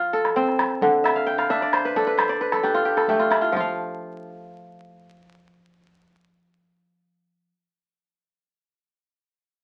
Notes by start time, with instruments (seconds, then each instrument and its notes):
Already playing: kora F3 F4 C5 F5
0.13 kora A4
0.25 calabash click
0.36 kora C4, calabash thump
0.48 calabash click
0.59 calabash click
0.70 calabash click
0.81 kora D3, calabash thump
1.04 kora E5, calabash click
1.16 kora F5
1.26 kora G5, calabash click
1.38 kora F5, calabash thump, calabash click
1.49 kora D4 E5, calabash click
1.61 kora D5, calabash click
1.73 kora C5, calabash click
1.85 kora B4
1.96 kora D4 A4, calabash thump
2.07 kora B4
2.17 kora C5, calabash click
2.29 kora D5, calabash click
2.41 kora B4
2.52 kora A4, calabash thump, calabash click
2.63 kora D4 G4, calabash click
2.74 kora F4
2.85 kora G4
2.97 kora A4, calabash click
3.08 kora A3 G4, calabash thump
3.19 kora F4, calabash click
3.30 kora E4, calabash click
3.41 kora F4
3.52 kora F3, calabash thump
3.56 kora F4 F5